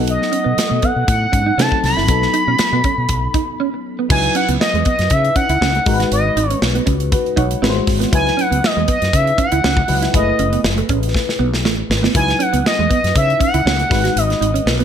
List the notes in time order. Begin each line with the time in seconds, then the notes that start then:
Already playing: B1 F#3 B3 D#4 A4 F#5
0.07 D#5, closed hi-hat
0.21 muted clean electric guitar stroke, snare
0.32 C#4, closed hi-hat
0.44 B2 B3
0.57 muted clean electric guitar stroke, muted fretless electric bass stroke, snare, closed hi-hat
0.69 B2 A3
0.82 B3 F#5, kick, closed hi-hat
0.96 B2
1.07 A2 F#5, muted clean electric guitar stroke, kick, closed hi-hat
1.32 G#2 C#4, kick, closed hi-hat
1.46 D#4
1.58 C3 F#3 C4 C#4 D#4 A4 A5, snare, closed hi-hat
1.71 muted clean electric guitar stroke, kick
1.84 C2 B5, snare, open hi-hat
1.97 F#1 E4, snare
2.08 B1 F#3 B3 D#4 A4, kick, closed hi-hat
2.22 muted clean electric guitar stroke, snare
2.34 D#4, closed hi-hat
2.47 B2 C#4
2.59 muted fretless electric bass stroke, muted clean electric guitar stroke, snare, closed hi-hat
2.73 B2 B3
2.84 C#4, kick, closed hi-hat
2.98 B2
3.09 B1, kick, closed hi-hat
3.34 D#4, kick, closed hi-hat
3.60 C#4
3.74 muted clean electric guitar stroke
3.99 B3
4.09 C#2 F#3 D#4 E4 B4 G#5, kick, crash
4.23 muted clean electric guitar stroke, closed hi-hat
4.35 C#4 F#5, closed hi-hat
4.49 C#2 B3, closed hi-hat
4.60 D#5, muted clean electric guitar stroke, snare
4.74 E2 G#3, closed hi-hat
4.85 B3 D#5, kick, closed hi-hat
4.99 F#2, snare, closed hi-hat
5.10 C#3 E5, muted clean electric guitar stroke, kick, closed hi-hat
5.25 closed hi-hat
5.36 C#4 F#5, kick, closed hi-hat
5.49 C#2 E4, closed hi-hat
5.61 C#2 C#4, snare
5.74 muted clean electric guitar stroke, closed hi-hat
5.86 G#1 G#3 D#4 F#4 A#4, kick, open hi-hat
5.94 B4
6.00 F#4, snare, closed hi-hat
6.12 G#1 D#5, closed hi-hat
6.26 muted clean electric guitar stroke
6.36 G#1 D#4, closed hi-hat
6.50 C#4, closed hi-hat
6.62 B1, muted clean electric guitar stroke, snare
6.75 B3, closed hi-hat
6.86 C#2 C#4, kick, closed hi-hat
7.00 closed hi-hat
7.12 F#4 B4, kick, closed hi-hat
7.26 closed hi-hat
7.36 B1 D#4 C#5 F#5, kick, closed hi-hat
7.51 closed hi-hat
7.62 G#1 G#3 C4 E4 F#4 B4, snare
7.69 C5
7.76 muted clean electric guitar stroke
7.87 G#1, kick, snare, open hi-hat
8.00 B3, snare, closed hi-hat
8.11 C#2 F#3 D#4 E4 B4 G#5, kick, closed hi-hat
8.25 muted clean electric guitar stroke, snare, closed hi-hat
8.37 C#4 F#5, closed hi-hat
8.51 C#2 B3, closed hi-hat
8.63 D#5, muted clean electric guitar stroke, snare
8.77 E2 G#3
8.88 B3 D#5, kick, closed hi-hat
9.02 F#2, snare, closed hi-hat
9.13 C#3 E5, muted clean electric guitar stroke, kick, closed hi-hat
9.27 closed hi-hat
9.38 C#4 F#5, kick, closed hi-hat
9.52 C#2 E4, closed hi-hat
9.64 C#2 C#4, snare
9.77 muted clean electric guitar stroke, kick
9.88 C#2 F#3 D#4 E4 B4, open hi-hat
10.02 E4, snare, closed hi-hat
10.12 F#1 G#3 E4 G#4 B4 D#5, kick, closed hi-hat
10.18 A3
10.28 muted clean electric guitar stroke
10.39 F#1 C#4, closed hi-hat
10.53 B3, closed hi-hat
10.64 F#1, muted clean electric guitar stroke, snare
10.78 A3, closed hi-hat
10.89 A1 C#4, kick, closed hi-hat
11.03 closed hi-hat
11.14 kick, snare
11.29 snare
11.39 B1 B3
11.54 snare
11.65 A1 A3, snare
11.79 muted clean electric guitar stroke
11.90 G#1, snare
12.03 B3, snare
12.14 C#2 F#3 D#4 E4 B4 G#5, kick, closed hi-hat
12.28 muted clean electric guitar stroke, snare, closed hi-hat
12.39 C#4 F#5, closed hi-hat
12.53 C#2 B3, closed hi-hat
12.65 D#5, muted clean electric guitar stroke, snare
12.79 E2 G#3
12.90 B3 D#5, kick, closed hi-hat
13.04 F#2, snare, closed hi-hat
13.15 C#3 E5, muted clean electric guitar stroke, kick, closed hi-hat
13.30 closed hi-hat
13.40 C#4 F#5, kick, closed hi-hat
13.54 C#2 E4, closed hi-hat
13.65 C#2 C#4, snare
13.79 muted clean electric guitar stroke, closed hi-hat
13.89 G#1 G#3 D#4 F#4 B4, kick, snare, open hi-hat
14.04 F#4, snare, closed hi-hat
14.16 G#1 D#5, closed hi-hat
14.30 muted clean electric guitar stroke, snare, closed hi-hat
14.41 G#1 D#4, closed hi-hat
14.54 C#4, closed hi-hat
14.66 B1, muted clean electric guitar stroke, snare
14.79 B3, closed hi-hat